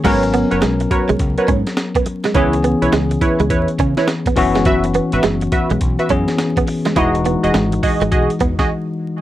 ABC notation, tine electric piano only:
X:1
M:4/4
L:1/8
Q:"Swing 16ths" 1/4=104
K:G#m
V:1 name="Tine electric piano"
[F,B,CA]8 | [E,B,CG]6- [E,B,CG] [E,B,CF]- | [E,B,CF]4- [E,B,CF] [E,B,CG]3 | [E,G,DF]8 |]